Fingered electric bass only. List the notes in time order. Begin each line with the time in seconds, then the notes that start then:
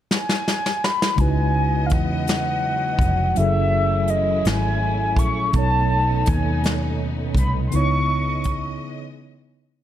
1.19 C#2
1.92 E2
3.00 F1
3.38 F#1
4.46 G#1
5.17 A#1
5.55 B1
6.28 D#2
7.35 C2
7.74 C#2